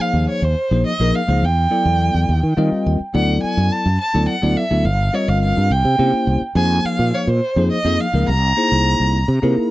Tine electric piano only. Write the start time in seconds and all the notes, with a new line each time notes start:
Already playing: F3 A#3 D#4 G#4 C5
0.71 F3 A#3 D#4 G#4 C5
1.00 F3 A#3 D#4 G#4 A#4
1.28 F3 A#3 D#4 G#4 C5
1.70 F#3 B3 E4 A4 D5
2.57 G3 C4 F4 A#4 D#5 F5
2.87 G5
3.14 F#3 B3 E4 A4 D5
4.14 F#3 B3 E4 A4 D5
4.42 F#3 B3 E4 A4 D5
4.70 F#3 B3 E4 A4 E5
5.13 G3 C4 F4 A#4 D#5
5.98 A#3 C#4 E4 G4 C5
6.56 F3 A#3 D#4 G#4 C5
7.56 F3 A#3 D#4 G#4 C5
7.85 F3 A#3 D#4 G#4 D#5
8.13 F3 A#3 D#4 G#4 A#4
8.56 A#3 D#4 E4 G#4 C5
9.42 A#3 D#4 E4 G#4 A#4